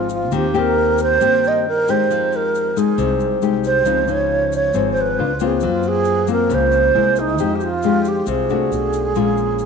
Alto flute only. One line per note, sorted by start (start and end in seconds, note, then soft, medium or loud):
0.14 0.33 F4 medium
0.37 0.60 G4 medium
0.59 1.00 A#4 medium
1.03 1.49 C5 loud
1.48 1.67 D#5 medium
1.68 1.92 A#4 medium
1.90 2.37 C5 medium
2.36 2.80 A#4 medium
2.79 3.38 G#4 medium
3.66 4.13 C5 medium
4.11 4.54 C#5 medium
4.56 4.89 C#5 medium
4.92 5.02 C5 medium
5.01 5.43 B4 medium
5.45 5.67 G#4 medium
5.65 5.89 F4 medium
5.88 6.31 G#4 medium
6.32 6.56 A#4 medium
6.54 7.21 C5 medium
7.19 7.57 D#4 medium
7.56 7.65 G4 medium
7.63 8.10 F4 medium
8.08 8.29 G4 medium
8.30 9.65 G#4 medium